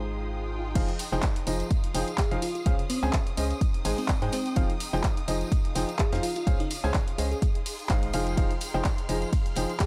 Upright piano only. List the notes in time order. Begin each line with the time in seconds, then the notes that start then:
Already playing: G#3 D#4 G#4 C5 G5
0.75 F3 D#4 G#4 C5 F5
1.12 F3 D#4 G#4 C5 G5
1.47 F3 D#4 G#4 C5 D#5
1.94 F3 D#4 G#4 C5 G5
2.31 F3 D#4 G#4 C5 F5
2.66 C#3 C#4 G#4 C5 F5
3.03 C#3 C#4 G#4 C5 G#5
3.37 C#4 G#4 C5 D#5
3.85 G#3 D#4 G#4 C5 G#5
4.22 G#3 D#4 G#4 C5 G5
4.56 F3 D#4 G#4 C5 F5
4.93 F3 D#4 G#4 C5 G5
5.28 F3 D#4 G#4 C5 D#5
5.75 F3 D#4 G#4 C5 G5
6.12 F3 D#4 G#4 C5 F5
6.47 C#3 C#4 G#4 C5 F5
6.84 C#3 C#4 G#4 C5 G#5
7.18 C#4 G#4 C5 D#5
7.90 G#3 D#4 G#4 C5 F5
8.14 F3 D#4 G#4 C5 F5
8.37 F3 D#4 G#4 C5 F5
8.74 F3 D#4 G#4 C5 G5
9.09 F3 D#4 G#4 C5 D#5
9.56 F3 D#4 G#4 C5 G5